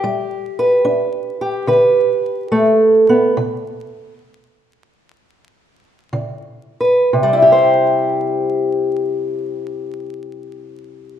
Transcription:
0.00 0.80 G3 medium
0.00 1.41 G4 medium
0.59 1.67 B4 medium
0.85 1.62 D4 medium
1.41 3.34 G4 medium
1.67 2.46 D3 medium
1.67 3.34 B4 medium
2.52 3.09 A3 medium
3.09 3.37 B3 medium
3.37 4.14 C3 medium
6.13 7.06 C#3 medium
6.80 7.09 B4 medium
7.13 11.20 C3 medium
7.23 11.20 G3 medium
7.33 11.20 E4 medium
7.42 11.20 G4 medium
7.52 11.20 C5 medium

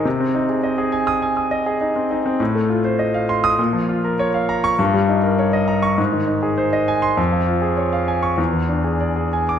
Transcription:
0.05 2.36 C3 medium
0.20 0.43 C4 medium
0.35 0.57 D#4 medium
0.49 0.72 G#4 medium
0.64 0.86 D#5 medium
0.78 1.01 G#4 medium
0.92 1.16 G#5 medium
1.07 1.30 D#6 medium
1.22 1.45 G#5 medium
1.37 1.60 D#6 medium
1.51 1.75 D#5 medium
1.66 1.90 G#4 medium
1.81 2.04 D#4 medium
1.96 2.19 C4 medium
2.11 2.34 D#4 medium
2.26 2.40 C4 medium
2.40 3.55 A2 medium
2.55 2.78 A3 medium
2.69 2.93 F4 medium
2.84 3.08 C5 medium
2.99 3.23 D#5 medium
3.14 3.38 F5 medium
3.29 3.53 C6 medium
3.44 3.58 D#6 loud
3.59 4.76 A#2 medium
3.73 3.97 F3 medium
3.89 4.13 F4 medium
4.04 4.28 A#4 medium
4.19 4.43 C#5 medium
4.34 4.58 F5 medium
4.49 4.73 A#5 medium
4.64 4.79 C#6 loud
4.79 5.95 G2 medium
4.94 5.18 G3 medium
5.09 5.33 D#4 medium
5.23 5.47 A#4 medium
5.39 5.63 C#5 medium
5.53 5.77 D#5 medium
5.68 5.92 A#5 medium
5.82 5.98 C#6 medium
5.98 7.14 G#2 medium
6.13 6.37 D#3 medium
6.27 6.52 D#4 medium
6.42 6.67 G#4 medium
6.58 6.82 C5 medium
6.73 6.97 D#5 medium
6.88 7.12 G#5 medium
7.02 7.17 C6 medium
7.17 8.34 F2 medium
7.32 7.56 F3 medium
7.47 7.71 F4 medium
7.62 7.86 G#4 medium
7.77 8.01 C#5 medium
7.93 8.17 F5 medium
8.08 8.32 G#5 medium
8.23 8.38 C#6 medium
8.38 9.59 E2 medium
8.53 8.78 E3 soft
8.69 8.94 D4 medium
8.84 9.10 G#4 medium
9.01 9.26 D5 medium
9.16 9.42 G#4 medium
9.33 9.59 G#5 medium
9.49 9.59 D6 medium

